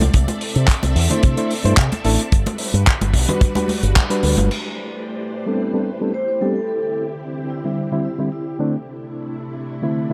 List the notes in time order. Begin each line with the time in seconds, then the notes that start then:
Already playing: C4 A4 D5 E5
0.01 closed hi-hat, high conga
0.14 C2, kick, closed hi-hat
0.28 closed hi-hat, muted conga, high conga
0.41 open hi-hat
0.55 C3, closed hi-hat
0.68 kick, clap, closed hi-hat
0.83 C2, closed hi-hat, muted conga
0.95 E2, open hi-hat
1.10 A3 D4 E4 C5, closed hi-hat, low conga
1.23 C3, kick, closed hi-hat
1.37 A3 D4 E4 C5, closed hi-hat
1.51 open hi-hat
1.64 G2 A3 D4 E4 C5, closed hi-hat
1.77 C3, kick, clap, closed hi-hat
1.92 closed hi-hat, muted conga, high conga
2.05 A1 A3 D4 E4 A4, open hi-hat
2.19 closed hi-hat
2.32 G1 G3 D4 F#4 B4, kick, closed hi-hat
2.46 closed hi-hat, muted conga, high conga
2.58 open hi-hat
2.74 G2, closed hi-hat
2.87 kick, clap, closed hi-hat
3.01 G1, closed hi-hat, muted conga
3.13 B1, kick, open hi-hat
3.28 G3 D4 F#4 B4, closed hi-hat, low conga
3.41 kick, closed hi-hat, muted conga
3.55 G3 D4 F#4 B4, closed hi-hat, muted conga, high conga
3.68 open hi-hat, high conga
3.83 G1, closed hi-hat
3.96 kick, clap, closed hi-hat
4.10 G3 D4 F#4 B4, closed hi-hat
4.23 D2, open hi-hat
4.37 G1, closed hi-hat, high conga
4.50 A3 E4 G4 B4 C5 D5, crash
5.46 G3 B3 C4 D4 A4
5.74 G3 B3 C4 D4 A4
6.01 G3 B3 C4 D4 A4
6.14 C5
6.28 C5
6.41 G3 B3 C4 D4 G4 A4
6.56 A4
6.68 D3 C4 A4
6.83 A4
7.50 E4
7.64 D3 G3 C4 E4
7.92 D3 G3 C4 E4
8.05 E4
8.19 D3 G3 C4 E4
8.32 E4
8.59 C3 D3 A3 C4 D4 E4
9.82 D3 A3 C4 E4
10.10 D3 A3